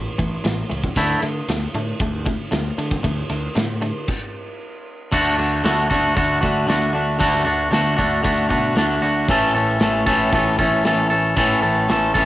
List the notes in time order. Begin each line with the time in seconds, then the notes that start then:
Already playing: A1 A2 E3
0.18 A1 A2 E3, kick, ride
0.44 A1 A2 E3, snare, ride
0.70 C#2 A2 E3, ride
0.84 kick
0.96 D2 D3 A3 E4, kick, ride
1.22 D3 A3, ride
1.48 D2 D3 A3, snare, ride
1.74 A2 D3 A3, ride
2.00 D2 D3 A3, kick, ride
2.26 D3 A3, kick, ride
2.51 D2 D3 A3, snare, ride
2.78 D3 A3, ride
2.91 kick, snare
3.03 D2 D3 A3, kick, ride
3.30 D2 D3 A3, ride
3.56 A2 D3 A3, snare, ride
3.82 D3 A3, ride
4.08 kick, crash
5.12 D2 D3 A3 D4 F#4, kick, crash
5.38 D2 A3 D4 F#4
5.64 D2 D3 A3 D4 F#4, snare, open hi-hat
5.90 D3 A3 D4 F#4, kick
6.15 D2 D3 A3 D4 F#4, kick, open hi-hat
6.41 D2 D3 A3 D4 F#4, kick
6.67 D2 D3 A3 D4 F#4, snare, open hi-hat
6.93 A3 D4 F#4
7.19 D2 D3 A3 D4 F#4, kick, open hi-hat
7.35 snare
7.45 D2 A3 D4 F#4
7.71 D2 D3 A3 D4 F#4, snare, open hi-hat
7.96 D2 D3 A3 D4 F#4, kick
8.23 D2 D3 A3 D4 F#4, kick, open hi-hat
8.49 B2 D3 A3 D4 F#4, kick
8.75 D2 D3 A3 D4 F#4, snare, open hi-hat
9.02 D2 A3 D4 F#4
9.28 A1 A2 E3 A3 C#4 A4, kick, open hi-hat
9.55 A1 A3 C#4 A4
9.80 A1 E3 A3 C#4 A4, snare, open hi-hat
10.06 A2 E3 A3 C#4 A4, kick
10.32 A1 E3 A3 C#4 A4, kick, open hi-hat
10.59 A1 A2 E3 A3 C#4 A4, kick
10.84 A1 E3 A3 C#4 A4, snare, open hi-hat
11.10 A3 C#4 A4
11.36 A1 A2 E3 A3 C#4 A4, kick, open hi-hat
11.62 A1 A3 C#4 A4
11.89 A1 E3 A3 C#4 A4, snare, open hi-hat
12.14 A1 A2 E3 A3 C#4 A4, kick